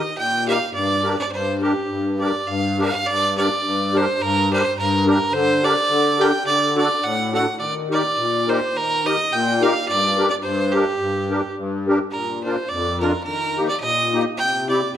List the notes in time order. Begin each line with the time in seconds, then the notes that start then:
Already playing: D#5
0.17 A#2 G5
0.48 D#4 G4 A#4 F5
0.72 G2 D5
1.03 D4 G4 A#4
1.18 D5
1.31 G2 C5
1.61 D4 G4 A#4
1.88 G2
2.20 D4 G4 A#4 D5
2.47 G2 F5
2.78 D4 G4 A#4 F5
3.05 G2 D5
3.37 D4 G4 A#4 D5
3.63 G2
3.94 D4 G4 A#4 C5
4.21 G2 A#4
4.51 D4 G4 A#4 C5
4.77 G2 A#4
5.06 D4 G4 A#4
5.32 D3 C5
5.63 D4 G4 A#4 D5
5.88 D3
6.19 D4 G4 A#4 G5
6.45 D3 D5
6.76 D4 F#4 A4 D5
7.03 A2 F#5
7.33 D4 F#4 A4 F#5
7.59 D#3 D5
7.90 D#4 G4 A#4 D5
8.16 A#2
8.48 D#4 G4 A#4 C5
8.74 D#3 A#4
9.05 D#4 G4 A#4 D#5
9.31 A#2 G5
9.62 D#4 G4 A#4 F5
9.88 G2 D5
10.18 D4 G4 A#4
10.30 D5
10.42 G2 C5
10.71 D4 G4 A#4
10.99 G2
11.30 D4 G4 A#4
11.56 G2
11.88 D4 G4 A#4
12.11 A#2 A#4
12.43 D4 F4 A#4 C5
12.69 F2 D5
13.00 D4 F4 A#4
13.23 D#3 A#4
13.57 A#3 D#4 G4
13.68 D5
13.80 A#2 D#5
14.13 A#3 D#4 G4
14.37 C3 G5
14.69 C4 E4 G4 D5